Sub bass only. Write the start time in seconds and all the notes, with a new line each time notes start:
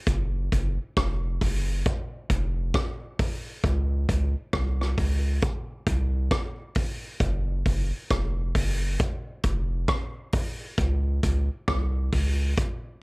0.07 F#1
0.53 F#1
0.97 F1
1.42 F#1
2.30 F1
3.64 C#2
4.09 C#2
4.54 C2
4.98 C#2
5.87 C2
7.21 F#1
7.66 F#1
8.11 F1
8.56 F#1
9.45 F1
10.78 C#2
11.24 C#2
11.69 C2
12.13 C#2